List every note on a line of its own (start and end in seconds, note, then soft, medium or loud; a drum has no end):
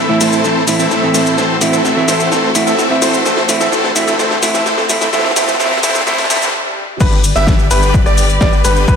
0.00 3.22 A2 medium
0.00 0.15 E3 medium
0.00 0.15 A3 medium
0.00 6.50 A3 medium
0.00 0.15 C4 medium
0.00 3.22 C4 medium
0.00 1.34 E4 loud
0.00 0.15 A4 medium
0.00 0.15 E5 medium
0.00 riser medium
0.08 0.41 A2 medium
0.08 0.41 E3 medium
0.08 0.41 A3 medium
0.08 0.41 C4 medium
0.08 0.42 E4 loud
0.21 0.42 E3 medium
0.21 0.42 A3 medium
0.21 0.42 C4 medium
0.21 0.42 A4 medium
0.21 0.42 C5 loud
0.21 snare medium
0.21 open hi-hat loud
0.21 shaker medium
0.32 shaker soft
0.44 0.62 E3 medium
0.44 0.63 A3 medium
0.44 0.63 C4 medium
0.44 0.63 A4 medium
0.44 0.62 C5 medium
0.44 snare medium
0.44 shaker soft
0.67 0.85 A2 medium
0.67 0.85 E3 medium
0.67 0.86 A3 medium
0.67 0.86 C4 medium
0.67 0.86 E4 loud
0.67 snare medium
0.67 open hi-hat loud
0.67 shaker medium
0.79 1.09 E3 medium
0.79 1.09 A3 medium
0.79 1.09 C4 medium
0.79 1.09 A4 medium
0.79 1.09 E5 medium
0.79 shaker soft
0.91 snare medium
0.91 shaker soft
1.02 1.35 A2 medium
1.02 1.35 E3 medium
1.02 1.35 A3 medium
1.02 1.35 C4 medium
1.02 1.35 E4 loud
1.14 1.36 E3 medium
1.14 1.36 A3 medium
1.14 1.36 C4 medium
1.14 1.36 A4 medium
1.14 1.36 C5 medium
1.14 snare medium
1.14 open hi-hat loud
1.14 shaker medium
1.26 shaker soft
1.38 1.56 E3 medium
1.38 1.56 A3 medium
1.38 1.56 C4 medium
1.38 6.49 F#4 medium
1.38 1.56 A4 medium
1.38 1.56 C5 loud
1.38 snare medium
1.38 shaker soft
1.61 1.79 A2 medium
1.61 1.79 E3 medium
1.61 1.79 A3 medium
1.61 1.80 C4 medium
1.61 1.80 E4 loud
1.61 snare medium
1.61 open hi-hat loud
1.61 shaker medium
1.73 2.02 E3 medium
1.73 2.02 A3 medium
1.73 2.02 C4 medium
1.73 2.02 A4 medium
1.73 2.02 E5 medium
1.73 shaker soft
1.85 snare medium
1.85 shaker soft
1.96 2.29 A2 medium
1.96 2.29 E3 medium
1.96 2.29 A3 medium
1.96 2.29 C4 medium
1.96 2.29 E4 loud
2.08 2.30 E3 medium
2.08 2.30 A3 medium
2.08 2.30 C4 medium
2.08 2.30 A4 medium
2.08 2.30 C5 medium
2.08 snare medium
2.08 open hi-hat loud
2.08 shaker medium
2.20 shaker soft
2.32 2.50 E3 medium
2.32 2.50 A3 medium
2.32 2.50 C4 medium
2.32 2.50 A4 medium
2.32 2.50 C5 medium
2.32 snare medium
2.32 shaker soft
2.54 2.73 A2 medium
2.54 2.73 E3 medium
2.54 2.73 A3 medium
2.54 2.73 C4 medium
2.54 2.73 E4 loud
2.54 snare medium
2.54 open hi-hat loud
2.54 shaker medium
2.67 2.96 E3 medium
2.67 2.96 A3 medium
2.67 2.96 C4 medium
2.67 2.96 A4 medium
2.67 2.96 E5 loud
2.67 shaker soft
2.79 snare medium
2.79 shaker soft
2.90 3.22 A2 medium
2.90 3.23 E3 medium
2.90 3.23 A3 medium
2.90 3.23 C4 medium
2.90 3.23 E4 loud
3.02 3.24 E3 medium
3.02 3.24 A3 medium
3.02 3.24 C4 medium
3.02 3.24 A4 medium
3.02 3.24 C5 loud
3.02 snare medium
3.02 open hi-hat loud
3.02 shaker medium
3.14 shaker soft
3.25 6.50 D2 medium
3.25 6.50 D3 medium
3.25 3.44 E3 medium
3.25 3.44 A3 medium
3.25 3.44 C4 medium
3.25 3.44 A4 medium
3.25 3.44 C5 loud
3.25 snare medium
3.25 shaker soft
3.37 snare medium
3.48 3.67 A2 medium
3.48 3.67 E3 medium
3.48 3.67 A3 medium
3.48 3.67 C4 medium
3.48 3.67 E4 loud
3.48 snare medium
3.48 open hi-hat loud
3.48 shaker medium
3.61 3.70 E3 medium
3.61 3.70 A3 medium
3.61 3.70 C4 medium
3.61 3.70 A4 medium
3.61 3.70 E5 loud
3.61 snare medium
3.61 shaker soft
3.72 3.91 E3 medium
3.72 3.91 A3 medium
3.72 3.91 C4 medium
3.72 3.91 A4 medium
3.72 3.91 C5 medium
3.72 snare medium
3.72 shaker soft
3.84 snare medium
3.95 4.13 A2 medium
3.95 4.14 E3 medium
3.95 4.14 A3 medium
3.95 4.14 C4 medium
3.95 4.14 E4 loud
3.95 snare loud
3.95 open hi-hat loud
3.95 shaker medium
4.07 4.17 E3 medium
4.07 4.17 A3 medium
4.07 4.17 C4 medium
4.07 4.17 A4 medium
4.07 4.17 E5 medium
4.07 snare medium
4.07 shaker soft
4.19 4.37 E3 medium
4.19 4.37 A3 medium
4.19 4.37 C4 medium
4.19 4.37 A4 medium
4.19 4.37 C5 medium
4.19 snare loud
4.19 shaker soft
4.31 snare medium
4.42 4.60 A2 medium
4.42 4.60 E3 medium
4.42 4.61 A3 medium
4.42 4.61 C4 medium
4.42 4.61 E4 loud
4.42 snare loud
4.42 open hi-hat loud
4.42 shaker medium
4.54 4.64 E3 medium
4.54 4.64 A3 medium
4.54 4.64 C4 medium
4.54 4.64 A4 medium
4.54 4.64 E5 loud
4.54 snare medium
4.54 shaker soft
4.66 4.84 E3 medium
4.66 4.84 A3 medium
4.66 4.84 C4 medium
4.66 4.84 A4 medium
4.66 4.84 C5 loud
4.66 snare loud
4.66 shaker soft
4.78 snare medium
4.89 5.07 A2 loud
4.89 5.07 E3 medium
4.89 5.08 A3 medium
4.89 5.08 C4 medium
4.89 5.08 E4 loud
4.89 snare loud
4.89 open hi-hat loud
4.89 shaker medium
5.01 5.11 E3 medium
5.01 5.11 A3 medium
5.01 5.11 C4 medium
5.01 5.11 A4 medium
5.01 5.11 E5 medium
5.01 snare medium
5.01 shaker soft
5.12 5.31 A2 loud
5.12 5.31 E3 medium
5.12 5.31 A3 loud
5.12 5.31 A3 medium
5.12 5.31 C4 medium
5.12 5.31 E4 loud
5.12 5.31 A4 medium
5.12 5.31 C5 loud
5.12 snare loud
5.12 shaker soft
5.19 snare loud
5.25 snare medium
5.30 snare medium
5.36 5.54 A2 loud
5.36 5.54 E3 medium
5.36 5.55 E3 medium
5.36 5.54 A3 medium
5.36 5.55 A3 medium
5.36 5.55 C4 medium
5.36 5.55 E4 loud
5.36 5.55 A4 medium
5.36 5.55 C5 loud
5.36 snare loud
5.36 open hi-hat loud
5.36 shaker medium
5.42 snare medium
5.48 snare medium
5.48 shaker soft
5.54 snare medium
5.59 5.78 A2 loud
5.59 5.78 E3 medium
5.59 5.78 A3 medium
5.59 5.78 C4 medium
5.59 5.78 E4 loud
5.59 5.78 A4 medium
5.59 5.78 C5 loud
5.59 snare medium
5.59 shaker soft
5.66 snare medium
5.72 snare medium
5.77 snare loud
5.82 6.01 A2 loud
5.82 6.01 E3 medium
5.82 6.02 E3 medium
5.82 6.01 A3 medium
5.82 6.02 A3 medium
5.82 6.02 C4 medium
5.82 6.01 C4 medium
5.82 6.02 E4 loud
5.82 6.02 A4 medium
5.82 6.02 C5 loud
5.82 snare loud
5.82 open hi-hat loud
5.82 shaker medium
5.89 snare medium
5.95 snare loud
5.95 shaker soft
6.01 snare loud
6.06 6.24 A2 loud
6.06 6.24 E3 medium
6.06 6.25 E3 medium
6.06 6.25 A3 medium
6.06 6.25 C4 medium
6.06 6.25 E4 loud
6.06 6.25 A4 medium
6.06 6.25 C5 loud
6.06 snare loud
6.06 swell medium
6.06 shaker soft
6.13 snare loud
6.18 snare medium
6.18 open hi-hat medium
6.24 snare medium
6.29 6.48 A2 loud
6.29 6.48 E3 medium
6.29 6.48 A3 medium
6.29 6.48 C4 medium
6.29 6.48 E4 loud
6.29 6.48 A4 medium
6.29 6.48 C5 loud
6.29 snare loud
6.29 open hi-hat loud
6.29 shaker medium
6.36 snare medium
6.42 snare loud
6.42 shaker medium
6.48 snare loud
7.00 7.33 G1 loud
7.00 7.19 D3 medium
7.00 7.19 G3 medium
7.00 8.96 G3 medium
7.00 7.19 B3 medium
7.00 7.19 G4 medium
7.00 8.96 G4 medium
7.00 7.19 B4 loud
7.00 7.19 B4 medium
7.00 8.96 B4 medium
7.00 8.86 D5 loud
7.00 kick loud
7.00 crash loud
7.00 shaker soft
7.12 shaker soft
7.24 open hi-hat loud
7.24 shaker medium
7.36 7.68 G1 loud
7.36 7.65 D3 medium
7.36 7.65 G3 medium
7.36 7.65 B3 medium
7.36 7.65 G4 medium
7.36 7.65 E5 loud
7.36 shaker soft
7.47 kick loud
7.47 snare loud
7.47 shaker soft
7.59 shaker soft
7.71 8.04 G1 loud
7.71 8.03 D3 loud
7.71 8.03 G3 medium
7.71 8.03 B3 medium
7.71 8.03 G4 medium
7.71 8.03 B4 loud
7.71 open hi-hat loud
7.71 shaker medium
7.83 shaker soft
7.94 kick loud
7.94 shaker soft
8.06 8.39 G1 medium
8.06 8.24 D3 medium
8.06 8.24 G3 medium
8.06 8.24 B3 medium
8.06 8.24 G4 medium
8.06 8.24 D5 medium
8.06 cross-stick medium
8.06 shaker soft
8.18 open hi-hat loud
8.18 shaker medium
8.29 shaker soft
8.41 8.62 G1 medium
8.41 8.59 D3 loud
8.41 8.59 G3 medium
8.41 8.59 B3 medium
8.41 8.59 G4 medium
8.41 8.59 D5 loud
8.41 kick loud
8.41 snare loud
8.41 shaker soft
8.53 shaker soft
8.64 8.86 G1 medium
8.64 8.85 D3 medium
8.64 8.85 G3 medium
8.64 8.85 B3 medium
8.64 8.85 G4 medium
8.64 8.85 B4 loud
8.64 cross-stick medium
8.64 open hi-hat loud
8.64 shaker medium
8.76 shaker soft
8.88 8.96 G1 medium
8.88 8.96 D3 medium
8.88 8.96 G3 medium
8.88 8.96 B3 medium
8.88 8.96 G4 medium
8.88 8.96 B4 loud
8.88 8.96 E5 loud
8.88 kick loud
8.88 shaker soft